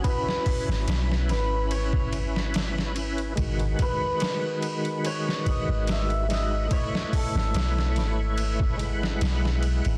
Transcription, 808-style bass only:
X:1
M:4/4
L:1/16
Q:"Swing 16ths" 1/4=72
K:G#phr
V:1 name="808-style bass" clef=bass
z3 G,,, B,,,2 G,,,8- G,,,2 | G,,,2 z8 z G,,,4- G,,, | z3 G,,, B,,,2 G,,,6 B,,,3 G,,, |]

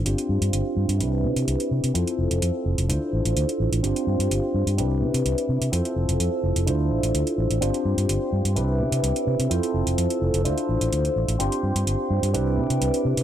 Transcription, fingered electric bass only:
X:1
M:4/4
L:1/16
Q:1/4=127
K:Gmix
V:1 name="Fingered electric bass" clef=bass
G,,, z G,, G,, G,,, z G,, G,, C,,2 C, C, C,, z C, C, | F,, z F,,, F,,, F,, z F,,, F,,, D,, z A,,, A,,, D,, z A,,, A,,, | G,,, z G,, G,, G,,, z G,, G,, C,,2 C, C, C,, z C, C, | F,, z F,,, F,,, F,, z F,,, F,,, D,,2 A,,, A,,, D,, z A,,, A,,, |
G,,, z G,, G,, G,,, z G,, G,, C,,2 C, C, C,, z C, C, | F,, z F,,, F,,, F,, z F,,, F,,, D,, z A,,, A,,, D,, z A,,, A,,, | G,,, z G,, G,, G,,, z G,, G,, C,,2 C, C, C,, z C, C, |]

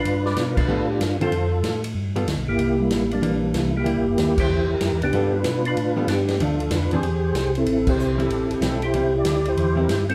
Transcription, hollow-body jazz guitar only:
X:1
M:4/4
L:1/8
Q:"Swing" 1/4=189
K:Gmix
V:1 name="Hollow-body jazz guitar"
z4 [G,B,FA] z2 [D,CFA] | z4 z [G,B,FA] z2 | z4 [E,_B,D]3 z | [G,^A,E] z6 z |
[G,B,FA] z4 [G,B,FA] z2 | [F,A,D] z2 [E,CD_A] z4 | z3 [G,CE] z2 [G,CE] z | [G,CE] z4 [G,CE] z2 |]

